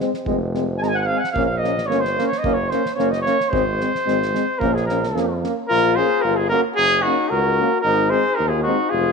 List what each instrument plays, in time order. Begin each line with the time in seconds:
0.00 euphonium C4, snare
0.14 snare
0.25 tuba F1, trombone G#3, euphonium C4, kick
0.53 trombone G#3, euphonium C4, snare
0.78 tuba G#1, trombone G#3, euphonium C4, trumpet G#5
0.82 trumpet A#5, snare
0.88 trumpet G#5
0.95 trumpet F#5 G#5
1.00 trumpet F#5
1.06 trombone G#3, euphonium C4, trumpet F5
1.17 trumpet F#5 G#5
1.24 snare
1.32 tuba A#1, trombone A#3, trumpet F5
1.36 euphonium C#4, kick
1.46 trumpet F5
1.57 trumpet D#5
1.62 trombone A#3, euphonium C#4, snare
1.78 snare
1.87 tuba G1, trombone A#3, trumpet C#5
1.91 euphonium C#4, snare
2.00 trumpet C5
2.05 snare
2.17 trombone A#3, euphonium C#4, snare
2.27 trumpet C#5
2.32 snare
2.38 tuba F#1, trumpet D#5
2.44 trombone A#3, euphonium C#4, kick
2.53 trumpet C#5
2.70 trombone A#3, euphonium C#4, trumpet C5, snare
2.85 snare
2.95 tuba F#1, trombone A#3, euphonium C#4, trumpet C#5
2.99 snare
3.11 trumpet D#5, snare
3.21 trumpet C#5
3.26 trombone A#3, euphonium C#4, snare
3.40 snare
3.49 tuba G#1, trombone G#3, trumpet C5
3.53 euphonium C4, kick
3.80 trombone G#3, euphonium C4, snare
3.95 snare
4.06 tuba G#1, trombone G#3, euphonium C4, snare
4.22 snare
4.32 trombone G#3, euphonium C4, snare
4.59 tuba A#1, trombone A#3, euphonium C#4, trumpet A#4, kick
4.74 trumpet G#4, snare
4.86 trombone A#3, euphonium C#4, trumpet A#4, snare
5.03 snare
5.15 tuba F2, trombone A#3, euphonium C#4, snare
5.42 trombone A#3, euphonium C#4, snare
5.67 tuba A#1, flugelhorn F4, trumpet A#4
5.95 trombone A#3, euphonium C#4, flugelhorn G#4, trumpet C5
6.21 tuba G1, flugelhorn F4, trumpet A#4
6.36 flugelhorn F4, trumpet G#4
6.49 trombone A#3, euphonium C#4, flugelhorn F#4, trumpet A#4
6.76 tuba F#1, flugelhorn C#4, trumpet G#4
7.02 trombone A#3, euphonium C#4, flugelhorn D#4, trumpet F#4
7.29 tuba C#2, flugelhorn F#4, trumpet A#4
7.59 trombone A#3, euphonium C#4
7.81 tuba G#1, flugelhorn D#4, trumpet A#4
8.10 trombone G#3, euphonium C4, flugelhorn G#4, trumpet C5
8.35 flugelhorn D#4, trumpet A#4
8.39 tuba D#2
8.48 flugelhorn F4, trumpet G#4
8.62 trombone G#3, flugelhorn D#4, trumpet F#4
8.67 euphonium C4
8.89 tuba F1, flugelhorn F4, trumpet G#4